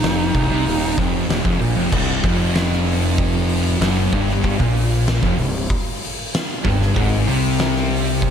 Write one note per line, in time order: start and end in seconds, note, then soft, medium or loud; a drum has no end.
0.00 0.32 F1 loud
0.00 0.95 D#4 loud
0.00 open hi-hat medium
0.04 0.34 F2 loud
0.04 snare loud
0.35 0.49 C1 loud
0.35 0.50 C2 loud
0.35 kick loud
0.35 open hi-hat medium
0.50 0.65 C2 loud
0.50 0.65 C3 loud
0.66 0.95 D#1 loud
0.66 0.96 D#2 loud
0.66 open hi-hat medium
0.98 1.27 F1 loud
0.98 1.28 F2 loud
0.98 kick loud
0.98 snare soft
0.98 open hi-hat medium
1.29 1.44 D#1 loud
1.29 1.44 D#2 loud
1.29 snare loud
1.29 open hi-hat medium
1.45 1.59 F1 loud
1.45 1.60 F2 loud
1.45 kick loud
1.61 1.76 A#1 loud
1.61 1.76 A#2 loud
1.61 open hi-hat medium
1.77 1.91 F1 loud
1.77 1.92 F2 loud
1.92 2.21 C1 loud
1.92 2.23 C2 loud
1.92 kick loud
1.92 crash loud
2.24 3.77 F1 loud
2.24 3.80 F2 loud
2.24 kick loud
2.24 open hi-hat medium
2.55 snare loud
2.55 open hi-hat medium
2.72 snare soft
2.87 open hi-hat medium
3.18 kick loud
3.18 open hi-hat loud
3.49 open hi-hat medium
3.81 4.10 F#1 medium
3.81 4.12 F#2 loud
3.81 snare loud
3.81 open hi-hat loud
4.12 4.56 G1 loud
4.12 4.59 G2 loud
4.12 kick loud
4.12 open hi-hat medium
4.29 snare soft
4.44 kick loud
4.44 open hi-hat medium
4.60 5.19 A#1 medium
4.60 5.22 A#2 loud
4.60 kick medium
4.76 open hi-hat medium
5.07 snare loud
5.07 open hi-hat medium
5.23 5.37 F1 loud
5.23 5.37 F2 loud
5.23 kick loud
5.23 snare soft
5.38 5.67 C1 medium
5.38 5.64 C2 medium
5.38 open hi-hat medium
5.70 kick loud
5.70 open hi-hat medium
6.02 open hi-hat medium
6.34 snare loud
6.34 open hi-hat medium
6.65 6.94 G1 loud
6.65 6.95 G2 loud
6.65 kick loud
6.65 open hi-hat medium
6.82 snare soft
6.96 7.25 G#1 loud
6.96 7.27 G#2 loud
6.96 kick loud
6.96 open hi-hat medium
7.27 8.30 C2 loud
7.27 8.30 C3 loud
7.27 open hi-hat medium
7.59 snare loud
7.59 open hi-hat medium
7.76 snare soft
7.90 open hi-hat medium
8.22 kick loud
8.22 open hi-hat medium